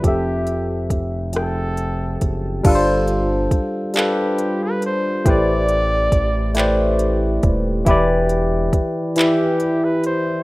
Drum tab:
CC |------|x-----|------|------|
HH |xxxxxx|xxxxxx|xxxxxx|xxxxxx|
CP |------|---x--|---x--|---x--|
SD |---r--|------|------|------|
BD |o-o--o|o-o---|o-o--o|o-o---|